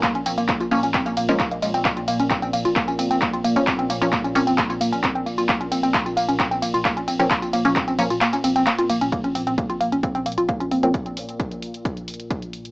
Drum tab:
RD |x---x---x---x---x---x---x---x---|x---x---x---x---x---x---x---x---|x---x---x---x---x---x---x---x---|x---x---x---x---x---x---x---x---|
HH |x-x-o-x-x-x-o-x-x-x-o-x-x-x-o-x-|x-x-o-x-x-x-o-x-x-x-o-x-x-x-o-x-|x-x-o-x-x-x-o-x-x-x-o-x-x-x-o-x-|x-x-o-x-x-x-o-x-x-x-o-x-x-x-o-x-|
TB |x---x-x-x-x-x-x-x-x-x-x-x---x-x-|x---x-x-x-x-x-x-x-x-x-x-x---x-x-|x---x-x-x-x-x-x-x-x-x-x-x---x-x-|x---x-x-x-x-x-x-x-x-x-x-x---x-x-|
CP |x-------x-------x-------x-------|x-------x-------x-------x-------|x-------x-------x-------x-------|x-------x-------x-------x-------|
BD |o-------o-------o-------o-------|o-------o-------o-------o-------|o-------o-------o-------o-------|o-------o-------o-------o-------|

RD |x---x---x---x---x---x---x---x---|--------------------------------|--------------------------------|
HH |x-x-o-x-x-x-o-x-x-x-o-x-x-x-o-x-|x-x-o-x-x-x-o-x-x-x-oxx-x-x-o-x-|x-x-o-x-x-x-o-x-x-x-oxx-x-x-o-x-|
TB |x-x-x-x-x-x-x-x-x-x-x-x-x---x-x-|--------------------------------|--------------------------------|
CP |x-------x-------x-------x-------|--------------------------------|--------------------------------|
BD |o-------o-----------------------|o-------o-------o-------o-------|o-------o-------o-------o-------|